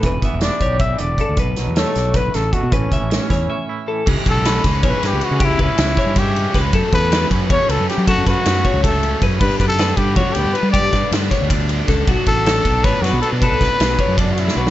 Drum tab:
CC |--------------|--------------|--------------|x-------------|
RD |--------------|--------------|--------------|--x-x-x-x-x-x-|
HH |x-x-x-x-x-x-x-|x-x-x-x-x-x-x-|x-x-x-x-------|--------------|
SD |----o---------|--o-o-o-o-o---|----o-o-------|----o-o---o---|
BD |o-o---o-o---o-|o-------o---o-|o-o---o-------|o-o---o-o-----|

CC |--------------|--------------|--------------|x-------------|
RD |x-x-x-x-x-x-x-|x-x-x-x-x-x-x-|x-x-x-x-x-x-x-|--x-x-x-x-x-x-|
HH |--------------|--------------|--------------|--------------|
SD |----o-o-o---o-|--o-o-------o-|--o-o---------|----o---------|
BD |o-o---o-o---o-|o-o---o-o-----|o-o---o-o---o-|o-o---o-o-----|

CC |--------------|--------------|--------------|
RD |x-x-x-x-x-x-x-|x-x-x-x-x-x-x-|x-x-x-x-x-x---|
HH |--------------|--------------|--------------|
SD |--o-o-o-----o-|----o---o-o---|--o-o------o-o|
BD |o-o---o-o---o-|o-o---o-o-----|o-o---o-o-----|